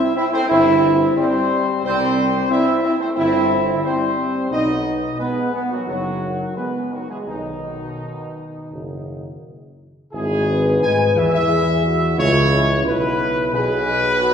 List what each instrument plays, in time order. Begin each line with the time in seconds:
Already playing: french horn section C4, trombone section E4, trumpet section E5
0.16 french horn section C4, trombone section E4, trumpet section E5
0.32 french horn section A3, trombone section C4, trumpet section C5
0.49 tuba G1, french horn section C4, trombone section E4, trumpet section E5
1.17 french horn section G3, trombone section C4, trumpet section C5
1.84 tuba C2, french horn section G3, trombone section C4, trumpet section C5
2.50 french horn section C4, trombone section E4, trumpet section E5
2.83 french horn section C4, trombone section E4, trumpet section E5
2.99 french horn section A3, trombone section C4, trumpet section C5
3.16 tuba G1, french horn section C4, trombone section E4, trumpet section E5
3.84 french horn section G3, trombone section C4, trumpet section C5
4.51 tuba B1, french horn section B3, trombone section D#4, trumpet section D#5
5.19 french horn section G#3, trombone section B3, trumpet section B4
5.53 french horn section G#3, trombone section B3, trumpet section B4
5.70 french horn section D#3, trombone section F#3, trumpet section F#4
5.87 tuba F#1, french horn section D#3, trombone section F#3, trumpet section F#4
6.56 french horn section G#3, trombone section B3, trumpet section B4
6.92 french horn section D#3, trombone section F#3, trumpet section F#4
7.09 french horn section E3, trombone section G#3, trumpet section G#4
7.27 tuba B1, french horn section B2, trombone section D#3, trumpet section D#4
8.71 tuba F#1
10.12 tuba G#1, trombone section G#2, french horn section E4, trumpet section G#4
10.47 french horn section B4
10.82 tuba G#2, trombone section G#3, trumpet section G#5
11.16 tuba E2, trombone section E3, trumpet section E5
11.32 tuba E2, trombone section E3, trumpet section E5
11.49 french horn section G#4
11.84 french horn section F#4
12.17 tuba C#2, trombone section C#3, french horn section E4, trumpet section C#5
12.84 tuba B1, trombone section B2, trumpet section B4
13.53 tuba B1, trombone section B2, french horn section G#4, trumpet section B4
14.20 french horn section F#4